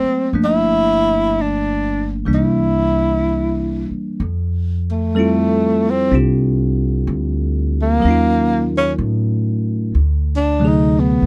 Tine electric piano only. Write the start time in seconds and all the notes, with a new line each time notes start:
Already playing: F#3 A3 A#3 C4
0.34 F3 A3 A#3 D4
2.25 E3 G3 A#3 D4
5.15 G3 C4 E4 A4
5.20 F4
6.11 C4 D4 F4 G4
8.00 F#3 A#4
8.05 C#4 D#4
8.11 F4
10.60 C3 D3 F#3 A3
10.65 G#4